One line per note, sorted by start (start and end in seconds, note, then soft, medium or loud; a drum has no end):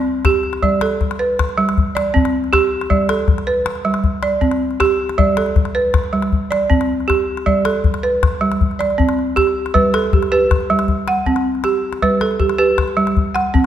0.00 0.24 C4 medium
0.00 0.24 D5 medium
0.25 0.63 G4 medium
0.25 calabash thump medium
0.25 calabash click medium
0.43 calabash click soft
0.53 calabash click soft
0.63 1.00 G3 medium
0.63 1.19 D5 medium
0.63 calabash thump medium
0.81 1.38 A4 medium
0.81 calabash click medium
0.91 calabash click soft
1.01 calabash thump medium
1.01 calabash click soft
1.11 calabash click soft
1.19 1.57 B4 medium
1.39 calabash thump medium
1.39 calabash click medium
1.49 calabash click soft
1.58 1.76 G3 medium
1.58 calabash click soft
1.69 calabash click soft
1.78 calabash thump medium
1.95 2.52 D5 medium
1.95 calabash click medium
2.14 2.52 C4 medium
2.14 calabash thump medium
2.25 calabash click medium
2.44 calabash click soft
2.53 2.90 G4 medium
2.53 calabash thump medium
2.53 calabash click medium
2.81 calabash click soft
2.90 3.28 G3 medium
2.90 3.47 D5 medium
2.90 calabash thump medium
3.09 3.66 A4 medium
3.09 calabash click medium
3.19 calabash click soft
3.28 calabash thump medium
3.28 calabash click soft
3.38 calabash click soft
3.47 4.04 B4 medium
3.66 calabash click medium
3.75 calabash click soft
3.85 4.04 G3 medium
3.85 calabash click soft
3.94 calabash click medium
4.04 calabash thump medium
4.23 4.80 D5 medium
4.23 calabash click medium
4.41 4.80 C4 medium
4.41 calabash thump medium
4.51 calabash click soft
4.71 calabash click soft
4.80 5.18 G4 medium
4.80 calabash thump medium
4.80 calabash click medium
5.09 calabash click soft
5.18 5.56 G3 medium
5.18 5.75 D5 medium
5.18 calabash thump medium
5.37 5.94 A4 medium
5.37 calabash click medium
5.46 calabash click soft
5.56 calabash thump medium
5.56 calabash click soft
5.65 calabash click soft
5.75 6.32 B4 medium
5.94 calabash thump medium
5.94 calabash click medium
6.04 calabash click soft
6.13 6.32 G3 medium
6.13 calabash click soft
6.22 calabash click soft
6.32 calabash thump medium
6.51 7.08 D5 medium
6.51 calabash click medium
6.70 7.08 C4 medium
6.70 calabash thump medium
6.81 calabash click soft
7.00 calabash click soft
7.08 7.46 G4 medium
7.08 calabash thump medium
7.08 calabash click medium
7.37 calabash click soft
7.46 7.84 G3 medium
7.46 8.03 D5 medium
7.46 calabash thump medium
7.65 8.22 A4 medium
7.65 calabash click medium
7.84 calabash thump medium
7.94 calabash click soft
8.03 8.60 B4 medium
8.03 calabash click soft
8.23 calabash thump medium
8.23 calabash click medium
8.41 8.60 G3 medium
8.52 calabash click soft
8.61 calabash thump medium
8.71 calabash click soft
8.79 9.36 D5 medium
8.79 calabash click medium
8.90 calabash click soft
8.98 9.36 C4 medium
8.98 calabash thump medium
9.09 calabash click soft
9.19 calabash click soft
9.36 9.74 G4 medium
9.36 calabash thump medium
9.36 calabash click medium
9.47 calabash click soft
9.66 calabash click soft
9.74 10.12 G3 medium
9.74 10.31 B4 medium
9.74 calabash thump medium
9.94 10.50 A4 medium
9.94 calabash click medium
10.04 calabash click soft
10.13 10.31 G4 medium
10.13 calabash thump medium
10.13 calabash click soft
10.23 calabash click soft
10.32 10.88 G4 medium
10.32 10.69 B4 medium
10.51 calabash thump medium
10.51 calabash click medium
10.61 calabash click soft
10.70 10.88 G3 medium
10.70 calabash click soft
10.79 calabash click soft
10.88 calabash thump medium
11.08 11.64 F#5 medium
11.08 calabash click medium
11.26 11.64 C4 medium
11.26 calabash thump medium
11.36 calabash click soft
11.55 calabash click soft
11.64 12.02 G4 medium
11.64 calabash click medium
11.93 calabash click soft
12.02 12.40 G3 medium
12.02 12.57 B4 medium
12.02 calabash thump soft
12.21 12.78 A4 medium
12.21 calabash click medium
12.31 calabash click soft
12.40 12.57 G4 medium
12.40 calabash thump medium
12.40 calabash click soft
12.49 calabash click soft
12.58 13.16 G4 medium
12.58 12.97 B4 medium
12.78 calabash thump medium
12.78 calabash click medium
12.88 calabash click soft
12.97 13.16 G3 medium
12.97 calabash click soft
13.07 calabash click soft
13.17 calabash thump medium
13.35 13.66 F#5 medium
13.35 calabash click medium
13.54 13.66 C4 medium
13.54 calabash thump medium